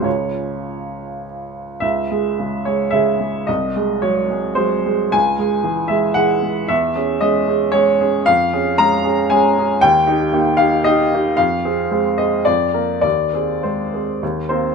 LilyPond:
\new Staff \with { instrumentName = "Grand piano" } { \time 3/4 \key des \major \tempo 4 = 111 << { des''2 r4 | \key cis \minor e''4. cis''8 e''4 | dis''4 cis''4 bis'4 | gis''4. e''8 fis''4 |
e''4 dis''4 cis''4 | \key ees \mixolydian f''4 bes''4 aes''4 | g''4. f''8 ees''4 | f''4. ees''8 d''4 |
d''4 c''4 r8 <c' c''>8 | } \\ { <des, des aes f'>2. | cis,8 <gis gis'>8 <cis gis gis'>8 <gis gis'>8 <cis gis gis'>8 <gis gis'>8 | bis,,8 <gis gis'>8 <fis gis gis'>8 <gis gis'>8 <fis gis gis'>8 <gis gis'>8 | cis,8 <gis gis'>8 <e gis gis'>8 <gis gis'>8 <e gis gis'>8 <gis gis'>8 |
e,8 <cis' gis'>8 <gis cis' gis'>8 <cis' gis'>8 <gis cis' gis'>8 <cis' gis'>8 | f,8 <des' aes'>8 <aes des' aes'>8 <des' aes'>8 <aes des' aes'>8 <des' aes'>8 | ees,8 <ees' g'>8 <bes ees' g'>8 <ees' g'>8 <bes ees' g'>8 <ees' g'>8 | f,8 <c' aes'>8 <aes c' aes'>8 <c' aes'>8 f,8 <bes bes'>8 |
ees,8 <c' aes'>8 <aes c' aes'>8 <c' aes'>8 ees,8 <bes bes'>8 | } >> }